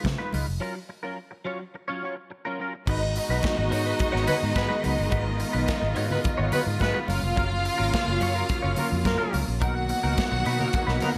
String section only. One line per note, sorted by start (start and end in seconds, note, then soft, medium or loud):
2.87 7.05 D#3 medium
2.87 7.05 G#3 medium
2.87 7.05 B3 medium
2.87 5.10 F#4 loud
5.14 9.58 F4 medium
7.10 9.60 C#3 medium
7.10 9.60 F#3 medium
7.10 9.60 A#3 medium
9.62 11.18 D#3 medium
9.62 11.18 F#3 medium
9.62 11.18 A#3 medium
9.62 11.18 B3 medium